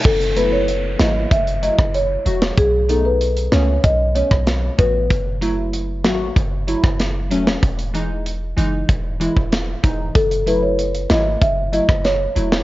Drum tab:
CC |x---------------|----------------|----------------|----------------|
HH |-xx-x-x-xxx-x-x-|x-x-xxx-x-x-x-x-|x-x-x-x-x-x-x-x-|xxx-x-x-x-x-x-x-|
SD |------o----r---o|------o----ro---|------o----ro--o|------------o---|
BD |o-------o--o----|o-------o--o--o-|o-------o--o----|o-------o--o--o-|

CC |----------------|
HH |xxx-xxx-x-x-x-x-|
SD |------o----ro--o|
BD |o-------o--o----|